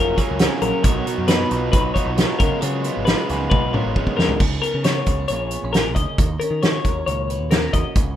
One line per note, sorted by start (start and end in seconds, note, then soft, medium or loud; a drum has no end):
0.00 0.22 F1 medium
0.00 0.19 F#3 medium
0.00 0.62 F#3 medium
0.00 0.17 A#3 medium
0.00 0.60 A#3 medium
0.00 0.16 C#4 medium
0.00 0.40 C#4 soft
0.00 0.60 F4 medium
0.00 2.14 F#4 medium
0.00 0.17 G#4 medium
0.00 0.18 A#4 medium
0.16 0.40 F#3 medium
0.16 0.40 A#3 medium
0.16 0.42 C#4 medium
0.16 0.30 G#4 soft
0.16 0.62 C#5 medium
0.16 kick medium
0.16 closed hi-hat medium
0.30 0.47 C#2 medium
0.30 0.62 A#4 soft
0.39 0.82 C#3 medium
0.39 0.83 F#3 medium
0.39 0.83 A#3 medium
0.39 0.87 C#4 medium
0.39 0.85 C#4 medium
0.39 snare loud
0.39 closed hi-hat medium
0.62 0.71 A#1 medium
0.62 1.06 F#3 medium
0.62 0.83 A#4 medium
0.62 closed hi-hat medium
0.83 1.02 B1 medium
0.83 1.26 B2 medium
0.83 2.37 B2 medium
0.83 1.08 F#3 medium
0.83 1.06 B3 medium
0.83 1.06 D#4 medium
0.83 1.28 C#5 medium
0.83 kick loud
0.83 closed hi-hat medium
1.06 2.61 F#3 medium
1.06 1.28 F#3 medium
1.06 1.29 B3 medium
1.06 1.30 D#4 medium
1.06 closed hi-hat medium
1.18 1.44 F#2 medium
1.27 1.72 B2 medium
1.27 1.52 F#3 medium
1.27 1.51 B3 medium
1.27 2.38 D#4 medium
1.27 1.49 D#4 medium
1.27 1.71 B4 medium
1.27 snare medium
1.27 closed hi-hat medium
1.49 1.69 B1 medium
1.49 1.97 F#3 soft
1.49 1.96 B3 medium
1.49 1.93 D#4 medium
1.49 1.94 F4 medium
1.49 closed hi-hat medium
1.72 1.91 B1 medium
1.72 1.94 B4 medium
1.72 2.16 C#5 medium
1.72 kick loud
1.72 closed hi-hat medium
1.94 2.18 F#3 medium
1.94 2.18 B3 medium
1.94 2.18 D#4 medium
1.94 2.37 F4 medium
1.94 2.38 C#5 medium
1.94 kick medium
1.94 closed hi-hat medium
2.06 2.24 B1 medium
2.17 2.38 B2 medium
2.17 2.40 F#3 medium
2.17 2.40 B3 medium
2.17 2.38 D#4 medium
2.17 2.37 A#4 medium
2.17 snare medium
2.17 closed hi-hat medium
2.39 2.49 C#2 medium
2.39 2.62 C#3 medium
2.39 2.59 C#3 medium
2.39 2.60 G#3 medium
2.39 2.62 B3 medium
2.39 2.62 F4 medium
2.39 2.61 A#4 medium
2.39 kick loud
2.39 closed hi-hat medium
2.60 3.04 C#3 medium
2.60 2.89 C#3 medium
2.60 5.32 F#3 medium
2.60 2.84 G#3 medium
2.60 2.83 B3 medium
2.60 2.82 F4 medium
2.60 3.05 C#5 medium
2.60 closed hi-hat medium
2.83 3.05 G#3 medium
2.83 3.06 B3 medium
2.83 3.96 B3 medium
2.83 3.07 F4 medium
2.83 closed hi-hat medium
2.97 3.14 G#1 medium
3.05 3.51 C#3 medium
3.05 3.30 G#3 medium
3.05 3.29 B3 medium
3.05 3.51 D#4 medium
3.05 3.27 F4 medium
3.05 3.49 B4 medium
3.05 snare medium
3.05 closed hi-hat medium
3.28 3.47 C#2 medium
3.28 3.75 G#3 medium
3.28 3.74 B3 medium
3.28 3.72 F4 medium
3.28 3.74 G#4 medium
3.28 snare soft
3.28 closed hi-hat soft
3.50 3.78 B1 medium
3.50 4.85 D#4 medium
3.50 3.73 B4 medium
3.50 kick medium
3.50 high tom soft
3.73 3.96 G#3 soft
3.73 3.96 B3 medium
3.73 3.97 F4 medium
3.73 4.16 A#4 medium
3.73 4.16 C#5 medium
3.73 mid tom medium
3.86 4.03 G#1 medium
3.96 4.39 C#3 medium
3.96 4.39 G#3 medium
3.96 4.39 B3 medium
3.96 4.40 F4 medium
3.96 kick medium
4.07 kick medium
4.17 4.27 F2 medium
4.17 4.39 C#3 medium
4.17 4.40 A#4 medium
4.17 snare medium
4.29 floor tom medium
4.40 4.58 C#2 medium
4.40 5.29 C#3 medium
4.40 kick medium
4.40 crash medium
4.62 5.29 B3 medium
4.62 4.84 A#4 medium
4.62 closed hi-hat medium
4.74 5.00 C#3 medium
4.84 5.27 F#4 soft
4.84 5.27 C#5 medium
4.84 snare medium
4.84 closed hi-hat medium
5.06 5.25 C#2 medium
5.06 5.20 G#4 soft
5.06 kick medium
5.06 closed hi-hat medium
5.20 5.30 A#4 soft
5.28 5.56 A#1 medium
5.28 5.75 A#2 medium
5.28 5.72 C#5 medium
5.28 closed hi-hat medium
5.32 6.17 A#3 medium
5.32 5.52 C#4 medium
5.32 6.18 F4 soft
5.32 6.21 G#4 medium
5.51 5.65 B3 soft
5.51 closed hi-hat medium
5.64 5.96 A#1 medium
5.64 6.19 C#4 soft
5.73 5.97 B2 medium
5.73 5.95 A#4 medium
5.73 snare medium
5.73 closed hi-hat medium
5.95 6.05 D2 medium
5.95 6.19 C#3 medium
5.95 6.18 D#5 medium
5.95 kick medium
5.95 closed hi-hat soft
6.18 6.36 D#2 medium
6.18 7.94 D#3 medium
6.18 kick loud
6.18 closed hi-hat medium
6.40 7.52 C#4 medium
6.40 6.62 A#4 medium
6.40 closed hi-hat soft
6.51 6.77 D#3 medium
6.62 7.75 F#4 soft
6.62 7.05 C#5 medium
6.62 snare medium
6.62 closed hi-hat medium
6.85 7.02 D#2 medium
6.85 7.30 A#4 soft
6.85 kick medium
6.85 closed hi-hat soft
7.06 7.41 C#2 medium
7.06 7.95 A#2 medium
7.06 7.51 C#5 medium
7.06 closed hi-hat medium
7.30 7.94 B4 soft
7.30 closed hi-hat soft
7.41 7.67 D#2 medium
7.51 7.63 B3 medium
7.51 7.73 A#4 medium
7.51 snare loud
7.51 closed hi-hat medium
7.63 7.96 C#4 soft
7.73 7.83 D#2 medium
7.73 8.16 F#4 soft
7.73 7.96 D#5 medium
7.73 kick medium
7.73 closed hi-hat medium
7.96 8.14 C#2 medium
7.96 8.16 C#3 medium
7.96 kick loud
7.96 closed hi-hat medium